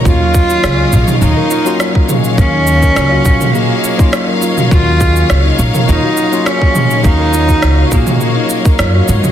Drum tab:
SH |x-xxx-xxx-xxx-xx|x-xxx-xxx-xxx-xx|x-xxx-xxx-xxx-xx|x-xxx-xxx-xxx-xx|
SD |----r-------r---|----r-------r---|----r-------r---|----r-------r---|
T2 |-------o------o-|-------o-------o|-------o------o-|-------o-------o|
BD |o-o----------o--|o--o--o----o----|o-o----------o--|o--o--o----o----|